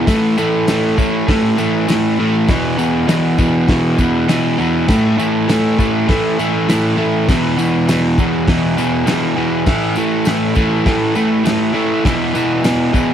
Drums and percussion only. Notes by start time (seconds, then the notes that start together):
0.07 kick, snare, open hi-hat, tambourine
0.38 tambourine
0.68 snare, open hi-hat, tambourine
0.98 kick, tambourine
1.28 kick, snare, open hi-hat, tambourine
1.58 tambourine
1.89 snare, open hi-hat, tambourine
2.48 kick, snare, open hi-hat, tambourine
2.79 tambourine
3.08 snare, open hi-hat, tambourine
3.38 kick, tambourine
3.68 kick, snare, open hi-hat, tambourine
3.98 kick, tambourine
4.29 snare, open hi-hat, tambourine
4.60 tambourine
4.88 kick, snare, crash, tambourine
5.20 tambourine
5.49 snare, open hi-hat, tambourine
5.79 kick, tambourine
6.09 kick, snare, open hi-hat, tambourine
6.39 tambourine
6.69 snare, open hi-hat, tambourine
7.29 kick, snare, open hi-hat, tambourine
7.59 tambourine
7.88 snare, open hi-hat, tambourine
8.18 kick, tambourine
8.47 kick, snare, open hi-hat, tambourine
8.78 tambourine
9.07 snare, open hi-hat, tambourine
9.66 kick, snare, open hi-hat, tambourine
9.96 tambourine
10.25 snare, open hi-hat, tambourine
10.55 kick, tambourine
10.86 kick, snare, open hi-hat, tambourine
11.15 tambourine
11.46 snare, open hi-hat, tambourine
12.05 kick, snare, open hi-hat, tambourine
12.35 tambourine
12.64 snare, open hi-hat, tambourine
12.94 kick, tambourine